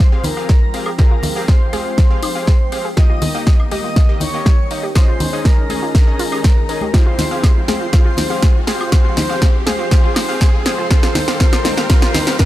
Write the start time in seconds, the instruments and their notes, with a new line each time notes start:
Already playing: analog synth pad F3 G#3 C4 G5, analog synth lead C5, digital synth lead C6, riser
0.12 supersaw synth C4 G4 G#4 F5
0.24 synth pluck D#4, analog synth lead A#4, digital synth lead A#5, open hi-hat, low conga
0.36 supersaw synth C4 G4 G#4 F5, synth pluck F5, high woodblock
0.49 synth pluck G#4, kick, snare
0.74 supersaw synth C4 G4 G#4 F5, synth pluck F5, open hi-hat
0.86 synth pluck G#4, high woodblock
0.98 supersaw synth C4 G4 G#4 F5, synth pluck F4, analog synth lead A#4, digital synth lead A#5, kick, snare
1.11 synth pluck F4
1.23 synth pluck D#4, open hi-hat, low conga
1.35 supersaw synth C4 G4 G#4 F5, synth pluck F5, high woodblock
1.48 synth pluck G#4, analog synth lead C5, digital synth lead C6, kick, snare
1.73 supersaw synth C4 G4 G#4 F5, synth pluck G#4, open hi-hat, high conga, high woodblock
1.86 synth pluck F4
1.98 synth pluck F5, kick, snare
2.10 supersaw synth C4 G4 G#4 F5
2.23 synth pluck D#4, open hi-hat, high woodblock
2.35 supersaw synth C4 G4 G#4 F5, synth pluck F5
2.47 synth pluck G#4, kick, snare
2.72 supersaw synth C4 G4 G#4 F5, synth pluck F5, open hi-hat, high woodblock
2.85 synth pluck G#4
2.97 analog synth pad D#3 G3 A#3, supersaw synth A#3 D#4 G4 D#5, synth pluck F4, analog synth lead D#5, digital synth lead D#6, kick, snare
3.10 synth pluck F4, high woodblock
3.22 synth pluck D#4, open hi-hat, low conga
3.34 supersaw synth A#3 D#4 G4 D#5, synth pluck F5
3.47 synth pluck G4, kick, snare
3.60 high woodblock
3.71 supersaw synth A#3 D#4 G4 D#5, synth pluck G4, analog synth lead D#5, digital synth lead D#6, open hi-hat, high conga
3.84 synth pluck F4
3.96 synth pluck F5, kick, snare
4.09 supersaw synth A#3 D#4 G4 D#5, high woodblock
4.20 synth pluck D#4, analog synth lead C#5, digital synth lead C#6, open hi-hat, low conga
4.34 supersaw synth A#3 D#4 G4 D#5, synth pluck F5
4.45 synth pluck G4, kick, snare, high woodblock
4.71 supersaw synth A#3 D#4 G4 D#5, synth pluck F5, open hi-hat
4.83 synth pluck G4
4.95 analog synth pad D#3 G#3 C#4 G#4, supersaw synth C#4 D#4 G#4 D#5, synth pluck F4, analog synth lead C5, digital synth lead C6, kick, snare, high woodblock
5.08 synth pluck F4
5.20 synth pluck D#4, open hi-hat, low conga
5.33 supersaw synth C#4 D#4 G#4 D#5, synth pluck F5
5.45 synth pluck G#4, analog synth lead A#4, digital synth lead A#5, kick, snare, high woodblock
5.70 supersaw synth C#4 D#4 G#4 D#5, synth pluck G#4, open hi-hat, high conga
5.82 synth pluck F4, high woodblock
5.95 synth pluck F5, kick, snare
6.07 supersaw synth C#4 D#4 G#4 D#5
6.19 synth pluck F4, open hi-hat
6.32 supersaw synth C#4 D#4 G#4 D#5, synth pluck G4, high woodblock
6.44 synth pluck C5, kick, snare
6.69 supersaw synth C#4 D#4 G#4 D#5, synth pluck A#4, open hi-hat
6.81 synth pluck G4, high conga, high woodblock
6.94 analog synth pad F3 G#3 C4 G5, supersaw synth C4 G4 G#4 F5, synth pluck F4, analog synth lead C5, digital synth lead C6, kick, snare, high woodblock
7.06 synth pluck F4
7.19 synth pluck D#4, snare, open hi-hat, low conga
7.31 supersaw synth C4 G4 G#4 F5, synth pluck F5
7.43 synth pluck G#4, kick, snare, high woodblock
7.68 supersaw synth C4 G4 G#4 F5, synth pluck G#4, analog synth lead C5, digital synth lead C6, snare, open hi-hat, high conga
7.81 synth pluck F4
7.93 supersaw synth C4 G4 G#4 F5, synth pluck F4, analog synth lead C5, digital synth lead C6, kick, snare, high woodblock
8.05 synth pluck F4
8.17 synth pluck D#4, snare, open hi-hat, low conga
8.30 supersaw synth C4 G4 G#4 F5, synth pluck F5, high woodblock
8.42 synth pluck G#4, kick, snare
8.67 supersaw synth C4 G4 G#4 F5, synth pluck G#4, analog synth lead C5, digital synth lead C6, snare, open hi-hat
8.80 synth pluck F4, high woodblock
8.92 supersaw synth C4 G4 G#4 F5, synth pluck F4, analog synth lead C5, digital synth lead C6, kick, snare
9.05 synth pluck F4
9.17 synth pluck D#4, snare, open hi-hat, low conga
9.29 supersaw synth C4 G4 G#4 F5, synth pluck F5, high woodblock
9.42 synth pluck G#4, kick, snare
9.66 supersaw synth C4 G4 G#4 F5, synth pluck G#4, analog synth lead C5, digital synth lead C6, snare, open hi-hat, high conga, high woodblock
9.79 synth pluck F4
9.91 supersaw synth C4 G4 G#4 F5, synth pluck F4, analog synth lead C5, digital synth lead C6, kick, snare
10.04 synth pluck F4
10.15 synth pluck D#4, snare, open hi-hat, high woodblock
10.29 supersaw synth C4 G4 G#4 F5, synth pluck F5
10.41 synth pluck G#4, kick, snare
10.65 supersaw synth C4 G4 G#4 F5, synth pluck G#4, analog synth lead C5, digital synth lead C6, snare, open hi-hat, high woodblock
10.78 synth pluck F4
10.90 analog synth pad D#3 G3 A#3 G4, supersaw synth C4 G4 F5, synth pluck F4, analog synth lead C5, digital synth lead C6, kick, snare
11.03 synth pluck F4, snare, high woodblock
11.15 synth pluck D#4, snare, open hi-hat, low conga
11.28 supersaw synth C4 G4 F5, synth pluck F5, snare
11.40 supersaw synth C4 G4 F5, synth pluck F4, analog synth lead C5, digital synth lead C6, kick, snare
11.52 synth pluck F4, snare, high woodblock
11.65 synth pluck D#4, snare, open hi-hat, high conga
11.77 supersaw synth C4 G4 F5, synth pluck F5, snare
11.89 supersaw synth C4 G4 F5, synth pluck F4, analog synth lead C5, digital synth lead C6, kick, snare
12.02 synth pluck F4, snare, high woodblock
12.14 synth pluck D#4, snare, open hi-hat, low conga
12.27 supersaw synth C4 G4 F5, synth pluck F5, snare
12.39 synth pluck F4, supersaw synth G4 F5, analog synth lead C5, digital synth lead C6, kick, snare, high woodblock